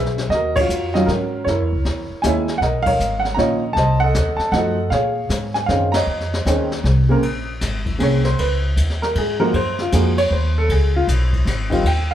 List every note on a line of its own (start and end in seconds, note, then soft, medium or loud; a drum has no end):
0.00 0.29 B1 medium
0.00 0.30 G#4 medium
0.00 0.30 B4 medium
0.00 0.31 E5 medium
0.06 snare soft
0.18 snare soft
0.29 0.68 D#2 medium
0.29 0.56 D#5 medium
0.29 brush sweep soft
0.29 snare soft
0.34 0.59 F#4 medium
0.34 0.92 A#4 medium
0.56 0.95 C#5 loud
0.56 kick medium
0.56 crash medium
0.61 0.95 F4 medium
0.61 1.07 F#4 medium
0.69 1.07 F2 medium
0.69 hi-hat pedal medium
0.94 1.07 D#3 medium
0.94 1.07 F#3 medium
0.94 1.07 C#4 medium
0.94 1.08 F4 medium
0.94 1.08 D#5 medium
0.94 snare soft
1.06 1.45 G#2 medium
1.06 1.43 A#4 medium
1.06 snare soft
1.11 1.46 C#4 medium
1.11 1.46 F#4 medium
1.44 1.60 F#2 medium
1.44 2.25 C#5 medium
1.44 brush sweep soft
1.44 snare soft
1.49 2.21 E4 medium
1.49 2.21 A#4 medium
1.60 1.72 E2 medium
1.73 1.84 C#2 medium
1.85 2.08 E2 medium
1.85 snare soft
2.10 muted upright bass stroke soft
2.22 2.61 D#2 medium
2.22 2.46 D#3 medium
2.22 2.46 G#3 medium
2.22 2.47 A#3 medium
2.22 2.62 G#5 medium
2.22 snare medium
2.22 hi-hat pedal medium
2.26 2.47 E4 medium
2.26 2.61 C#5 medium
2.26 2.61 E5 medium
2.48 snare soft
2.58 2.99 B1 medium
2.58 2.64 F#5 medium
2.58 brush sweep soft
2.58 snare soft
2.62 2.85 A#4 medium
2.62 3.21 D#5 medium
2.83 3.20 F5 loud
2.83 kick medium
2.83 crash medium
2.87 3.35 A#4 medium
2.87 3.35 C#5 medium
2.99 3.37 G#1 medium
2.99 hi-hat pedal soft
3.20 3.35 F#5 medium
3.25 snare soft
3.34 3.76 A#1 medium
3.34 3.60 D#3 medium
3.34 3.60 A#3 medium
3.34 3.76 A#5 medium
3.39 3.61 C#4 medium
3.39 3.61 F4 medium
3.39 3.75 C#5 medium
3.39 3.75 D#5 medium
3.39 snare soft
3.73 4.14 C2 medium
3.73 4.01 A5 medium
3.73 brush sweep medium
3.73 snare soft
3.78 4.37 C5 medium
3.78 4.03 D#5 medium
4.00 4.41 F#5 loud
4.04 4.52 A4 medium
4.04 4.52 D#5 medium
4.15 4.38 D#2 medium
4.15 snare medium
4.15 hi-hat pedal medium
4.37 4.53 A5 medium
4.37 muted upright bass stroke soft
4.37 snare soft
4.52 4.90 F#2 medium
4.52 4.76 F3 medium
4.52 4.76 A3 medium
4.52 4.77 D#4 medium
4.52 4.77 F#4 medium
4.52 4.91 D#5 medium
4.52 4.89 F#5 medium
4.52 snare soft
4.57 4.91 A4 medium
4.90 5.29 A#2 medium
4.90 5.52 G#4 medium
4.90 5.52 C#5 medium
4.90 5.57 F5 medium
4.90 brush sweep medium
4.90 snare soft
5.29 5.67 G#2 medium
5.29 snare medium
5.29 hi-hat pedal soft
5.54 5.59 G#5 medium
5.54 snare soft
5.66 6.06 F#2 loud
5.66 5.91 D#3 medium
5.66 5.92 C4 medium
5.66 5.92 C#4 medium
5.66 5.92 G#4 medium
5.66 5.94 F5 medium
5.66 snare soft
5.92 6.81 C#5 medium
5.92 6.81 D#5 medium
5.92 6.80 A#5 medium
5.92 snare medium
5.92 ride medium
6.06 6.45 F2 medium
6.06 brush sweep medium
6.20 snare soft
6.33 snare soft
6.45 6.83 D#2 medium
6.45 6.69 D#3 medium
6.45 6.69 C4 medium
6.45 6.69 C#4 medium
6.45 6.69 G#4 medium
6.45 snare medium
6.45 hi-hat pedal medium
6.72 snare soft
6.84 7.22 C2 loud
6.84 snare soft
7.09 7.22 C#3 medium
7.09 7.22 A#3 medium
7.09 7.22 C4 medium
7.09 7.23 A#4 medium
7.23 ride medium
7.61 7.99 G#1 medium
7.61 snare soft
7.61 hi-hat pedal soft
7.61 ride medium
7.86 kick medium
7.86 ride soft
7.98 8.38 C2 medium
7.98 8.22 C#3 medium
7.98 8.22 A#3 soft
7.98 8.22 C4 soft
7.98 8.23 G#4 medium
7.98 ride medium
8.03 8.26 C#5 medium
8.25 8.38 C5 medium
8.25 snare medium
8.39 8.76 C#2 medium
8.39 8.54 B4 medium
8.39 ride medium
8.76 9.14 D#2 medium
8.76 hi-hat pedal soft
8.76 ride medium
8.90 snare soft
9.02 9.15 A#4 medium
9.02 snare soft
9.15 9.53 G#2 medium
9.15 9.41 G#4 medium
9.15 ride medium
9.40 9.52 F3 medium
9.40 9.53 G#3 medium
9.40 9.53 A#3 medium
9.40 9.53 F#4 medium
9.40 9.54 A#4 medium
9.53 9.91 F#2 medium
9.53 9.79 C5 loud
9.53 ride medium
9.79 9.94 F4 medium
9.79 snare soft
9.92 10.30 F2 medium
9.92 10.15 F3 medium
9.92 10.15 G#3 medium
9.92 10.16 A#3 medium
9.92 10.16 F#4 medium
9.92 10.18 G#4 medium
9.92 hi-hat pedal medium
9.92 ride medium
10.18 10.31 C#5 loud
10.18 ride medium
10.30 10.68 D#2 medium
10.30 10.56 C5 medium
10.58 10.70 A4 medium
10.69 11.06 C#2 medium
10.69 10.95 G#4 medium
10.69 ride medium
10.96 11.04 F4 medium
11.07 11.45 B1 medium
11.07 hi-hat pedal medium
11.07 ride medium
11.33 kick soft
11.33 ride soft
11.45 11.83 G#1 medium
11.45 snare soft
11.45 ride medium
11.70 11.83 D#3 medium
11.70 11.83 G3 medium
11.70 11.84 C4 medium
11.70 11.84 F4 medium
11.70 kick soft
11.70 ride soft
11.83 12.14 D#2 medium
11.83 12.10 G5 medium
11.83 ride medium
12.11 12.14 F5 medium